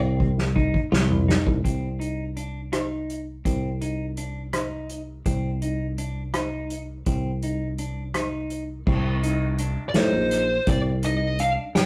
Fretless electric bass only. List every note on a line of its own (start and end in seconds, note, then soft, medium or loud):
0.00 0.72 C2 loud
0.92 1.36 C2 loud
1.47 1.62 C2 medium
1.65 3.42 C2 medium
3.46 5.23 C2 medium
5.26 7.04 C2 medium
7.07 8.84 C2 medium
8.87 9.75 C2 medium
9.95 10.10 A2 medium
10.13 10.57 A#1 medium
10.67 11.55 C2 medium
11.75 11.86 G2 medium